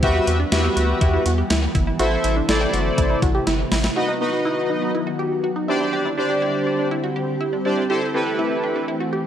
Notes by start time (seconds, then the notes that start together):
0.03 E2 E3 G3 B3 F#4 G4 B4 E5 F#5, kick, closed hi-hat
0.15 F#4
0.27 E2 F#4, closed hi-hat
0.40 D4
0.52 E2 E4 F#4 G4 B4 E5, snare, closed hi-hat
0.64 G4
0.76 D2 F#4, closed hi-hat
1.01 E2 E4, kick, closed hi-hat
1.13 E4
1.26 E2 F#4, closed hi-hat
1.38 G4
1.50 D2 E4, snare, closed hi-hat
1.75 G1 E4, kick, closed hi-hat
1.87 E4
1.99 A1 C3 A3 E4 F#4 A4 C5 E5, closed hi-hat
2.12 E4
2.24 A1 E4, closed hi-hat
2.36 D4
2.49 A1 E4 A4 C5 D5, snare, closed hi-hat
2.61 G4
2.73 G1 F#4, closed hi-hat
2.98 A1 E4, kick, closed hi-hat
3.10 E4
3.22 A1 F#4, kick, closed hi-hat
3.35 G4
3.47 G1 E4, snare, closed hi-hat
3.72 A1 E4, snare, open hi-hat
3.84 E4, snare
3.96 D#3 F#3 B3 D#4 F#4 B4 D#5
4.08 D#4
4.21 B3 D#4 F#4 B4 D#5
4.33 F#4
4.45 E4
4.70 D#4
4.82 D#4
4.95 E4
5.07 F#4
5.19 G4
5.44 F#4
5.56 D#4
5.68 D3 G3 C4 D4 E4 G4 C5 D5
5.81 E4
5.93 G4
6.05 E4
6.17 D4 G4 C5 D5
6.30 G4
6.42 E4
6.67 D4
6.79 D4
6.91 E4
7.04 F#4
7.16 G4
7.41 E4
7.53 D4
7.65 D4 E4 G4 C5 D5
7.77 E4
7.90 E3 A3 E4 G4 A4 C5
8.02 E4
8.14 C4 E4 G4 A4 B4
8.27 G4
8.39 E4
8.63 D4
8.76 D4
8.88 E4
9.00 F#4
9.13 G4